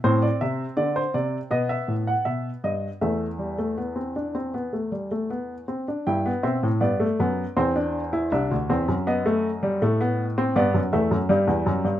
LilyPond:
<<
  \new Staff \with { instrumentName = "Grand piano" } { \time 4/4 \key e \minor \tempo 4 = 80 c''16 d''16 e''8 d''16 c''16 d''8 dis''16 e''8 fis''16 e''8 dis''8 | e''2.~ e''8 r8 | g''8 e''8 d''4 c''4 e''4 | dis''2 d''8 e''4. | }
  \new Staff \with { instrumentName = "Grand piano" } { \clef bass \time 4/4 \key e \minor << { c'2 b2 | a8 g16 a16 b16 c'16 d'16 c'16 b16 a16 g16 a16 b8 c'16 d'16 | e'16 b16 c'8 b16 a16 b8 c'16 d'8 e'16 d'8 c'8 | b16 a8 g16 a16 b8 c'16 b8 a8 g4 | } \\ { a,8 c8 d8 c8 b,8 a,8 b,8 g,8 | e,2.~ e,8 r8 | g,8 b,16 a,16 g,8 fis,8 e,4 c,16 d,16 e,16 fis,16~ | fis,4 a,4 g,16 fis,16 e,16 fis,16 g,16 e,16 fis,16 g,16 | } >> }
>>